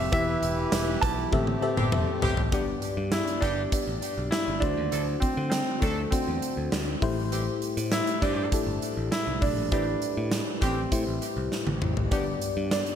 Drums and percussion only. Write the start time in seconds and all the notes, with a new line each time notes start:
0.12 kick, closed hi-hat, cowbell
0.43 closed hi-hat
0.72 snare, closed hi-hat, tambourine, cowbell
1.02 kick, closed hi-hat, cowbell
1.32 kick, high tom, cowbell
1.47 high tom
1.62 cowbell
1.77 mid tom
1.92 mid tom, cowbell
2.22 floor tom
2.37 floor tom
2.52 kick, closed hi-hat
2.82 closed hi-hat
3.12 snare, closed hi-hat
3.27 closed hi-hat
3.42 kick, closed hi-hat
3.72 kick, closed hi-hat
4.02 closed hi-hat
4.32 snare, closed hi-hat
4.62 kick, closed hi-hat
4.92 closed hi-hat
5.22 kick, closed hi-hat
5.52 snare, closed hi-hat
5.82 kick, closed hi-hat
6.12 kick, closed hi-hat
6.42 closed hi-hat
6.72 snare, closed hi-hat
7.02 kick, open hi-hat
7.32 closed hi-hat
7.62 closed hi-hat
7.77 closed hi-hat
7.92 snare, closed hi-hat
8.07 closed hi-hat
8.22 kick, closed hi-hat
8.52 kick, closed hi-hat
8.82 closed hi-hat
9.12 snare, closed hi-hat
9.42 kick, open hi-hat
9.72 kick, closed hi-hat
10.02 closed hi-hat
10.31 snare, closed hi-hat
10.62 kick, closed hi-hat
10.92 kick, closed hi-hat
11.22 closed hi-hat
11.52 snare
11.67 high tom
11.82 mid tom
11.97 floor tom
12.11 kick, closed hi-hat, cowbell
12.42 closed hi-hat
12.71 snare, closed hi-hat, cowbell
12.87 closed hi-hat